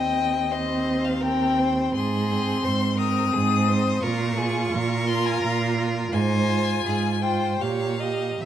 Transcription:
Already playing: cello D#2, viola C4, violin D#5 G5
0.50 viola C4, violin C5 D#5
1.04 violin F5
1.20 viola C4, violin A#4 G5
1.59 violin C5
1.94 cello G#2, violin G#4 C6
2.28 viola C4
2.63 cello G#2, violin C5
2.98 viola C4, violin A#4 D#6
3.33 cello G#2, violin G#4
3.68 viola C4, violin C5
4.02 cello A#2, viola F4, violin A#4 C#6
4.37 viola F4, violin G#4
4.73 cello A#2, violin A#4
5.07 viola F4, violin C6
5.26 violin G#5
5.42 cello A#2, violin A#5
5.76 viola F4
6.12 cello G#2, violin C5 G#5
6.47 viola F4
6.84 cello G#2, violin G#4
7.22 viola F4, violin C5 G5
7.60 cello A#2, viola G4, violin C#5 F5
8.00 viola G4, violin D#5
8.40 cello C3, violin E5

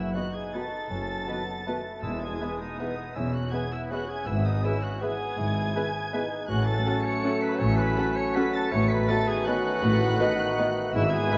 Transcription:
Already playing: bassoon B3, clarinet E4, flute section E5, violin section E6
0.14 trombone section B2 D#3, french horn section B3 F#4, viola section B3 F#4, bassoon D#4, clarinet F#4, trumpet section B4, violin section B4 D#5 F#6, flute section F#5
0.34 clarinet G#4, flute section G#5, violin section G#6
0.54 trombone section B2 D#3, viola section B3 F#4, french horn section B3 F#4, clarinet A4, trumpet section B4, violin section B4 D#5 A6, flute section A5
0.90 double bass section F#1, cello section F#2, bassoon C#4
1.27 trombone section B2 D#3, bassoon B3, viola section B3 F#4, french horn section B3 F#4, violin section B4 D#5, trumpet section B4
1.66 trombone section B2 D#3, bassoon A3, french horn section B3 F#4, viola section B3 F#4, violin section B4 D#5, trumpet section B4
2.03 double bass section E1, timpani E2, cello section E2, bassoon G#3, clarinet E4, flute section E5, violin section E6
2.21 clarinet G#4, flute section G#5, violin section G#6
2.40 trombone section B2 E3, french horn section B3 G#4, viola section B3 G#4, trumpet section B4, violin section B4 E5
2.60 clarinet D#4, flute section D#5, violin section D#6
2.79 trombone section B2 E3, bassoon B3, viola section B3 G#4, french horn section B3 G#4, violin section B4 E5, trumpet section B4
3.15 double bass section E1, cello section E2, bassoon C#4, clarinet E4, flute section E5, violin section E6
3.33 clarinet F#4, flute section F#5, violin section F#6
3.52 trombone section B2 E3, bassoon B3, viola section B3 G#4, french horn section B3 G#4, clarinet G#4, trumpet section B4, violin section B4 E5 G#6, flute section G#5
3.72 clarinet E4, flute section E5, violin section E6
3.91 trombone section B2 E3, viola section B3 G#4, french horn section B3 G#4, bassoon C#4, clarinet F#4, trumpet section B4, violin section B4 E5 F#6, flute section F#5
4.09 clarinet G#4, flute section G#5, violin section G#6
4.27 double bass section G#1, cello section G#2, bassoon B3, clarinet E4, flute section E5, violin section E6
4.45 clarinet D#4, flute section D#5, violin section D#6
4.64 trombone section B2 E3, viola section B3 G#4, french horn section B3 G#4, bassoon C#4, clarinet E4, trumpet section B4, violin section B4 E5 E6, flute section E5
4.83 clarinet F#4, flute section F#5, violin section F#6
5.01 trombone section B2 E3, bassoon B3, viola section B3 G#4, french horn section B3 G#4, clarinet G#4, trumpet section B4, violin section B4 E5 G#6, flute section G#5
5.38 double bass section G#1, cello section G#2, bassoon E4
5.75 trombone section B2 E3, viola section B3 G#4, french horn section B3 G#4, trumpet section B4, violin section B4 E5
6.13 trombone section B2 E3, viola section B3 G#4, french horn section B3 G#4, bassoon D#4, trumpet section B4, violin section B4 E5
6.48 double bass section A1, cello section A2, trombone section F#3 A3, bassoon C#4, french horn section C#4 F#4, clarinet F#4, trumpet section A4, flute section F#5, violin section F#6
6.66 clarinet A4, flute section A5, violin section A6
6.85 viola section C#4 F#4, violin section A4 F#5
7.04 clarinet C#5, flute section C#6, violin section C#7
7.24 bassoon A3, viola section C#4 F#4, violin section A4 F#5
7.42 clarinet B4, flute section B5, violin section B6
7.59 double bass section A1, cello section A2, bassoon C#4, clarinet C#5, flute section C#6, violin section C#7
7.78 clarinet B4, flute section B5, violin section B6
7.97 viola section C#4 F#4, violin section A4 F#5
8.16 clarinet C#5, flute section C#6, violin section C#7
8.36 viola section C#4 F#4, bassoon F#4, violin section A4 F#5 B6, clarinet B4, flute section B5
8.55 clarinet A4, flute section A5, violin section A6
8.71 double bass section A1, cello section A2, trombone section D#3 A3, bassoon A3, french horn section B3 F#4, trumpet section B4, clarinet C#5, flute section C#6, violin section C#7
8.89 clarinet B4, flute section B5, violin section B6
9.08 viola section B3 F#4, clarinet A4, violin section B4 D#5 A6, flute section A5
9.28 clarinet G#4, flute section G#5, violin section G#6
9.47 viola section B3 F#4, bassoon C#4, clarinet F#4, violin section B4 D#5 F#6, flute section F#5
9.82 double bass section A1, cello section A2, bassoon B3
10.19 viola section B3 F#4, bassoon D#4, violin section B4 D#5
10.58 viola section B3 F#4, violin section B4 D#5
10.94 double bass section G#1, cello section G#2, trombone section E3 G#3, french horn section B3 G#4, bassoon E4, clarinet E4, trumpet section B4, flute section E5, violin section E6
11.12 clarinet G#4, flute section G#5, violin section G#6
11.31 viola section B3 G#4, bassoon D#4, violin section B4 E5

